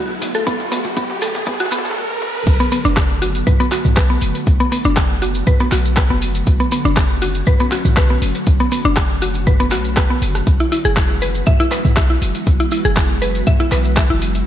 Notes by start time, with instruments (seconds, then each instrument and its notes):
Already playing: 808-style bass B1, ambient pad D3 F#3 A3 B3 G#4, riser
0.22 808-style bass F#1, open hi-hat, mid tom, maracas
0.34 synth arpeggio sound A4, closed hi-hat, maracas
0.47 808-style bass B1, synth arpeggio sound B3, kick, closed hi-hat, mid tom, maracas
0.60 closed hi-hat, mid tom
0.72 synth arpeggio sound B3, open hi-hat, mid tom, maracas
0.84 808-style bass F#1, mid tom, maracas
0.97 synth arpeggio sound B3, kick, closed hi-hat, mid tom, maracas
1.10 mid tom
1.21 synth arpeggio sound A4, open hi-hat, mid tom, maracas
1.35 closed hi-hat, mid tom, maracas
1.46 synth arpeggio sound B3, kick, closed hi-hat, mid tom, maracas
1.53 mid tom
1.60 synth arpeggio sound F#4, closed hi-hat, mid tom
1.66 mid tom
1.71 808-style bass B1, synth arpeggio sound B3, open hi-hat, mid tom, maracas
1.78 mid tom
1.85 mid tom, maracas
1.91 mid tom
1.97 high tom
2.10 high tom
2.22 mid tom
2.35 mid tom
2.47 808-style bass B1, ambient pad D3 F#3 A3 B3 F#4, kick, closed hi-hat, crash, maracas
2.60 synth arpeggio sound B3, closed hi-hat
2.72 synth arpeggio sound B3, open hi-hat, maracas
2.85 808-style bass F#1, synth arpeggio sound D4, maracas
2.97 kick, cross-stick, clap, closed hi-hat, maracas
3.22 synth arpeggio sound F#4, open hi-hat, maracas
3.35 closed hi-hat, maracas
3.47 synth arpeggio sound B4, kick, closed hi-hat, mid tom, maracas
3.60 synth arpeggio sound B3, closed hi-hat
3.71 synth arpeggio sound F#4, clap, open hi-hat, maracas
3.85 808-style bass B1, mid tom, maracas
3.96 synth arpeggio sound B4, kick, cross-stick, clap, closed hi-hat, maracas
4.10 synth arpeggio sound B3
4.21 808-style bass F#1, open hi-hat, maracas
4.35 closed hi-hat, maracas
4.46 808-style bass B1, kick, closed hi-hat, maracas
4.60 synth arpeggio sound B3, closed hi-hat
4.72 synth arpeggio sound B3, open hi-hat, maracas
4.84 808-style bass F#1, synth arpeggio sound D4, maracas
4.97 kick, cross-stick, clap, closed hi-hat, maracas
5.22 synth arpeggio sound F#4, open hi-hat, maracas
5.34 closed hi-hat, maracas
5.46 synth arpeggio sound B4, kick, closed hi-hat, mid tom, maracas
5.60 synth arpeggio sound B3, closed hi-hat
5.71 808-style bass B1, synth arpeggio sound F#4, clap, open hi-hat, maracas
5.85 maracas
5.97 synth arpeggio sound B4, kick, cross-stick, clap, closed hi-hat, maracas
6.10 808-style bass F#1, synth arpeggio sound B3
6.22 open hi-hat, maracas
6.35 closed hi-hat, maracas
6.46 808-style bass B1, ambient pad C#4, kick, closed hi-hat, maracas
6.60 synth arpeggio sound B3, closed hi-hat
6.72 synth arpeggio sound B3, open hi-hat, maracas
6.85 808-style bass F#1, synth arpeggio sound D4, maracas
6.97 kick, cross-stick, clap, closed hi-hat, maracas
7.22 synth arpeggio sound F#4, open hi-hat, maracas
7.34 closed hi-hat, maracas
7.46 synth arpeggio sound B4, kick, closed hi-hat, mid tom, maracas
7.60 synth arpeggio sound B3, closed hi-hat
7.72 synth arpeggio sound F#4, clap, open hi-hat, maracas
7.85 808-style bass B1, mid tom, maracas
7.96 synth arpeggio sound B4, kick, cross-stick, clap, closed hi-hat, maracas
8.10 synth arpeggio sound B3
8.22 808-style bass F#1, open hi-hat, maracas
8.35 closed hi-hat, maracas
8.46 808-style bass B1, kick, closed hi-hat, maracas
8.60 synth arpeggio sound B3, closed hi-hat
8.72 synth arpeggio sound B3, open hi-hat, maracas
8.85 808-style bass F#1, synth arpeggio sound D4, maracas
8.97 kick, cross-stick, clap, closed hi-hat, maracas
9.22 synth arpeggio sound F#4, open hi-hat, maracas
9.34 closed hi-hat, maracas
9.46 synth arpeggio sound B4, kick, closed hi-hat, mid tom, maracas
9.60 synth arpeggio sound B3, closed hi-hat
9.71 808-style bass B1, synth arpeggio sound F#4, clap, open hi-hat, maracas
9.85 maracas
9.97 808-style bass F#1, synth arpeggio sound B4, kick, cross-stick, clap, closed hi-hat, maracas
10.10 synth arpeggio sound B3
10.22 808-style bass F#1, open hi-hat, maracas
10.35 cross-stick, closed hi-hat, maracas
10.47 808-style bass B1, ambient pad E3 G#3 B3, kick, closed hi-hat, maracas
10.60 synth arpeggio sound E4, closed hi-hat
10.72 synth arpeggio sound E4, open hi-hat, maracas
10.85 808-style bass F#1, synth arpeggio sound G#4, maracas
10.96 kick, cross-stick, clap, closed hi-hat, maracas
11.22 synth arpeggio sound B4, open hi-hat, maracas
11.34 closed hi-hat, maracas
11.46 synth arpeggio sound E5, kick, closed hi-hat, mid tom, maracas
11.60 synth arpeggio sound E4, closed hi-hat
11.71 synth arpeggio sound B4, clap, open hi-hat, maracas
11.85 808-style bass B1, mid tom, maracas
11.97 synth arpeggio sound E5, kick, cross-stick, clap, closed hi-hat, maracas
12.10 synth arpeggio sound E4
12.22 808-style bass F#1, open hi-hat, maracas
12.35 closed hi-hat, maracas
12.47 808-style bass B1, kick, closed hi-hat, maracas
12.60 synth arpeggio sound E4, closed hi-hat
12.71 synth arpeggio sound E4, open hi-hat, maracas
12.85 808-style bass F#1, synth arpeggio sound G#4, maracas
12.97 kick, cross-stick, clap, closed hi-hat, maracas
13.22 synth arpeggio sound B4, open hi-hat, maracas
13.35 closed hi-hat, maracas
13.46 synth arpeggio sound E5, kick, closed hi-hat, mid tom, maracas
13.60 synth arpeggio sound E4, closed hi-hat
13.71 808-style bass B1, synth arpeggio sound B4, clap, open hi-hat, maracas
13.84 maracas
13.96 synth arpeggio sound E5, kick, cross-stick, clap, closed hi-hat, maracas
14.10 808-style bass F#1, synth arpeggio sound E4
14.21 open hi-hat, maracas
14.35 closed hi-hat, maracas